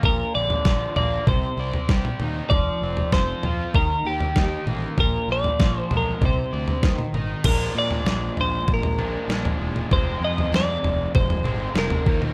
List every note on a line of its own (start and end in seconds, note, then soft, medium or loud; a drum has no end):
0.03 0.23 A#1 medium
0.03 1.28 A#2 medium
0.03 0.35 A#4 medium
0.03 kick loud
0.03 floor tom medium
0.35 0.55 A#1 medium
0.35 1.28 D3 medium
0.35 0.96 D5 loud
0.50 floor tom medium
0.65 0.85 A#1 medium
0.65 1.28 F3 medium
0.65 kick loud
0.65 snare medium
0.96 1.17 A#1 medium
0.96 1.28 A#3 medium
0.96 1.28 D5 medium
0.96 floor tom medium
0.96 mid tom medium
1.27 1.47 C2 medium
1.27 2.52 C3 medium
1.27 2.17 C5 medium
1.27 kick loud
1.27 floor tom medium
1.27 mid tom medium
1.57 1.77 C2 medium
1.57 2.52 D5 medium
1.73 floor tom medium
1.89 2.09 C2 medium
1.89 2.52 G4 medium
1.89 kick loud
1.89 snare medium
2.05 mid tom medium
2.20 2.40 D#2 medium
2.20 2.52 D#4 medium
2.20 mid tom medium
2.50 2.70 F1 medium
2.50 3.76 F3 medium
2.50 3.13 D5 loud
2.50 kick loud
2.50 floor tom medium
2.82 3.02 F1 medium
2.82 3.13 C4 medium
2.97 floor tom medium
3.12 3.32 F1 medium
3.12 3.76 C4 medium
3.12 3.75 C5 medium
3.12 kick medium
3.12 snare medium
3.43 3.63 F2 medium
3.43 3.75 F4 medium
3.43 floor tom medium
3.43 mid tom medium
3.74 3.94 D#2 medium
3.74 4.99 D#3 medium
3.74 4.07 A#4 medium
3.74 kick loud
3.74 floor tom medium
4.04 4.24 D#2 medium
4.04 4.64 G4 medium
4.04 4.99 G4 medium
4.20 floor tom medium
4.36 4.56 D#2 medium
4.36 4.99 D#4 medium
4.36 kick medium
4.36 snare medium
4.66 4.87 A1 medium
4.66 4.99 A#3 medium
4.66 mid tom medium
4.98 5.18 A#1 medium
4.98 6.22 A#2 medium
4.98 5.28 A#4 medium
4.98 kick loud
4.98 floor tom medium
5.28 5.48 A#1 medium
5.28 5.59 F3 medium
5.32 5.80 D5 loud
5.44 floor tom medium
5.59 5.79 A#1 medium
5.59 6.22 F3 medium
5.59 kick loud
5.59 snare medium
5.80 5.94 C5 loud
5.91 6.11 B1 medium
5.91 6.22 G#3 medium
5.91 floor tom medium
5.91 mid tom medium
5.97 6.23 A#4 medium
6.21 6.41 C2 medium
6.21 6.84 C3 medium
6.21 kick medium
6.21 floor tom medium
6.21 mid tom medium
6.25 7.12 C5 medium
6.53 6.73 D2 medium
6.53 6.84 D5 medium
6.68 floor tom medium
6.83 7.03 D#2 medium
6.83 7.46 D#3 medium
6.83 kick medium
6.83 snare medium
6.99 mid tom medium
7.13 7.33 G#1 medium
7.13 7.45 D#4 medium
7.13 mid tom medium
7.43 7.69 A#1 medium
7.43 8.97 A#2 medium
7.43 9.00 F3 medium
7.43 8.98 G#3 medium
7.43 8.97 D4 medium
7.43 7.74 A#4 medium
7.43 kick loud
7.43 floor tom medium
7.43 crash medium
7.75 7.99 A#2 medium
7.75 8.40 D5 loud
7.91 floor tom medium
8.05 8.29 A#1 medium
8.05 snare medium
8.37 8.61 A#1 medium
8.37 8.71 C5 medium
8.37 floor tom medium
8.67 9.15 A#1 medium
8.67 kick medium
8.74 9.60 A#4 medium
8.83 floor tom medium
8.98 9.28 A#2 medium
8.98 9.31 F3 medium
8.98 9.28 G#3 medium
8.98 9.28 D4 medium
8.98 mid tom medium
9.28 9.53 A#1 medium
9.28 9.90 A#2 medium
9.28 9.93 F3 medium
9.28 snare medium
9.32 9.91 G#3 medium
9.32 9.92 D4 medium
9.45 floor tom medium
9.60 9.84 E1 medium
9.76 mid tom medium
9.91 10.15 F1 medium
9.91 11.43 F2 medium
9.91 11.44 C3 medium
9.91 11.44 F3 medium
9.91 11.45 G#3 medium
9.91 11.44 C4 medium
9.91 10.24 C5 medium
9.91 kick loud
9.91 floor tom medium
10.20 10.45 F2 medium
10.25 10.52 D#5 medium
10.38 floor tom medium
10.52 10.76 F2 medium
10.52 11.12 D5 medium
10.52 snare medium
10.83 11.07 F1 medium
10.83 floor tom medium
11.15 11.38 F1 medium
11.15 11.72 C5 medium
11.15 kick loud
11.15 mid tom medium
11.30 floor tom medium
11.43 11.68 G#1 medium
11.43 11.75 G#3 medium
11.43 11.74 C4 medium
11.43 mid tom medium
11.47 11.75 F2 medium
11.47 11.75 C3 medium
11.47 11.75 F3 medium
11.74 11.99 F1 medium
11.74 12.05 F2 medium
11.74 12.05 C3 medium
11.74 12.06 F3 medium
11.74 12.06 G#3 medium
11.74 snare medium
11.79 12.07 C4 medium
11.79 12.20 A#4 medium
11.90 floor tom medium
12.06 12.30 D#2 medium
12.06 12.34 D#3 medium
12.06 12.34 F3 medium
12.06 12.34 A#3 medium
12.06 12.34 D#4 medium
12.06 kick loud
12.22 mid tom medium